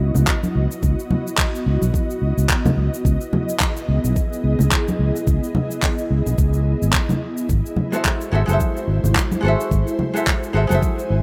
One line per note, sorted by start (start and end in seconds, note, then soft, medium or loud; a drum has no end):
0.00 7.45 B3 medium
0.00 11.23 E4 medium
0.00 3.01 F#4 medium
0.00 7.45 D#5 medium
0.15 0.23 C#2 medium
0.15 low conga medium
0.15 shaker medium
0.27 kick loud
0.27 clap medium
0.27 shaker medium
0.43 high conga medium
0.43 shaker soft
0.55 0.66 C#2 medium
0.71 shaker medium
0.83 0.93 C#2 medium
0.83 kick loud
0.83 shaker medium
0.99 shaker soft
1.11 high conga medium
1.11 low conga medium
1.27 shaker medium
1.38 kick loud
1.38 clap loud
1.38 shaker medium
1.55 shaker soft
1.66 1.77 C#2 medium
1.82 1.90 B1 medium
1.82 high conga medium
1.82 shaker medium
1.94 kick loud
1.94 shaker medium
2.10 shaker soft
2.22 2.32 C#2 medium
2.38 2.45 C#2 medium
2.38 shaker medium
2.49 kick loud
2.49 clap loud
2.49 shaker medium
2.65 high conga medium
2.65 low conga medium
2.65 shaker soft
2.77 2.88 C#2 medium
2.94 shaker medium
3.05 3.15 C#2 medium
3.05 7.46 G#4 medium
3.05 kick loud
3.05 shaker medium
3.21 shaker medium
3.33 high conga medium
3.33 low conga medium
3.49 shaker medium
3.60 kick medium
3.60 clap loud
3.60 shaker medium
3.77 shaker soft
3.89 3.99 C#2 medium
4.04 4.12 B1 medium
4.04 high conga medium
4.04 shaker medium
4.16 kick loud
4.16 shaker medium
4.33 shaker medium
4.44 4.54 C#2 medium
4.59 4.67 C#2 medium
4.59 low conga medium
4.59 shaker medium
4.72 kick loud
4.72 clap medium
4.72 shaker medium
4.88 high conga medium
4.88 shaker soft
4.99 5.10 C#2 medium
5.16 shaker medium
5.27 5.38 C#2 medium
5.27 kick loud
5.27 shaker medium
5.44 shaker medium
5.55 high conga medium
5.55 low conga medium
5.71 shaker medium
5.82 kick loud
5.82 clap medium
5.82 shaker medium
5.98 shaker soft
6.11 6.21 C#2 medium
6.26 6.34 B1 medium
6.26 high conga medium
6.26 shaker medium
6.38 6.73 C#2 medium
6.38 kick loud
6.38 shaker medium
6.53 shaker soft
6.82 6.90 G#1 medium
6.82 shaker medium
6.93 kick loud
6.93 clap medium
6.93 shaker medium
7.09 high conga medium
7.09 low conga medium
7.09 shaker soft
7.37 shaker medium
7.49 7.60 G#1 medium
7.49 9.69 F#4 medium
7.49 11.23 C5 medium
7.49 kick loud
7.49 shaker medium
7.66 shaker soft
7.76 high conga medium
7.76 low conga medium
7.92 8.29 G#3 medium
7.92 8.30 F#4 medium
7.92 8.30 A4 medium
7.92 8.31 C5 medium
7.92 8.31 E5 medium
7.92 shaker medium
8.05 kick medium
8.05 clap medium
8.05 shaker medium
8.21 shaker medium
8.31 8.43 G#1 medium
8.31 8.41 G#3 medium
8.31 8.41 F#4 medium
8.31 8.42 A4 medium
8.31 8.42 C5 medium
8.31 8.43 E5 medium
8.46 8.56 F#1 medium
8.46 9.39 G#3 medium
8.46 9.40 F#4 medium
8.46 9.41 A4 medium
8.46 high conga medium
8.46 shaker medium
8.51 9.42 C5 medium
8.51 9.43 E5 medium
8.60 kick medium
8.60 shaker medium
8.77 shaker soft
8.88 8.98 G#1 medium
9.04 9.12 G#1 medium
9.04 low conga medium
9.04 shaker medium
9.15 kick medium
9.15 clap medium
9.15 shaker medium
9.32 high conga medium
9.32 shaker soft
9.41 9.54 G#1 medium
9.41 10.10 G#3 medium
9.41 10.11 F#4 medium
9.41 10.12 A4 medium
9.46 10.13 C5 medium
9.46 10.14 E5 loud
9.60 shaker medium
9.71 9.82 G#1 medium
9.71 11.23 G#5 medium
9.71 kick loud
9.71 shaker medium
9.87 shaker soft
9.99 high conga medium
9.99 low conga medium
10.14 10.51 G#3 medium
10.14 10.52 F#4 medium
10.14 10.52 A4 medium
10.14 10.52 C5 medium
10.14 10.53 E5 medium
10.14 shaker medium
10.26 kick medium
10.26 clap medium
10.26 shaker medium
10.43 shaker soft
10.53 10.65 G#1 medium
10.53 10.63 G#3 medium
10.53 10.63 F#4 medium
10.53 10.64 A4 medium
10.53 10.64 C5 medium
10.53 10.65 E5 medium
10.67 10.78 F#1 medium
10.67 11.23 G#3 medium
10.67 11.23 F#4 medium
10.67 11.23 A4 medium
10.67 high conga medium
10.67 shaker medium
10.73 11.23 C5 medium
10.73 11.23 E5 medium
10.82 kick loud
10.82 shaker medium
10.99 shaker soft
11.10 11.21 G#1 medium